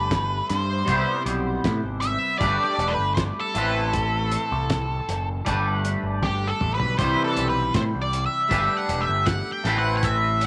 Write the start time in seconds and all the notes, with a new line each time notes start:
Already playing: G1 G3 A3 D4 G4 B4
0.11 kick, snare, closed hi-hat
0.50 G2 C5, snare, closed hi-hat
0.85 C2 C3 G3 B3 E4 G4 C5, kick, closed hi-hat
1.26 B1, closed hi-hat
1.64 A2, kick, snare, closed hi-hat
1.83 G#1
2.01 E5, closed hi-hat
2.38 G1 G3 A3 D4 G4 D5, kick, closed hi-hat
2.43 B4
2.64 D5
2.78 E1, closed hi-hat
2.88 B4
2.98 G1
3.14 C5, kick, snare, closed hi-hat
3.40 A4
3.54 A1 A2 E3 A3 C4 E4 B4, closed hi-hat
3.93 kick, closed hi-hat
4.31 closed hi-hat
4.52 C2
4.70 kick, snare, closed hi-hat
5.09 F#1, closed hi-hat
5.45 G1 G3 A3 D4 G4 B4, kick, closed hi-hat
5.85 closed hi-hat
6.03 G1
6.23 G4, kick, snare
6.47 A4
6.61 A1, mid tom
6.74 B4
6.80 B1, floor tom
6.98 C2 C3 E3 G3 C4 E4 B4 C5, kick, closed hi-hat
7.24 A4
7.37 B1, closed hi-hat
7.49 B4
7.74 A2 C5, kick, snare, closed hi-hat
7.95 C2
8.02 D5
8.13 closed hi-hat
8.26 E5
8.49 G1 G3 A3 D4 G4 B4, kick, closed hi-hat
8.77 F#5
8.89 E1, closed hi-hat
9.01 E5
9.09 G1
9.26 F#5, kick, snare, closed hi-hat
9.52 G5
9.64 A1 A2 E3 A3 C4 E4 B4, snare, closed hi-hat
9.78 F#5
9.97 F#5
10.03 E5, kick, closed hi-hat
10.41 closed hi-hat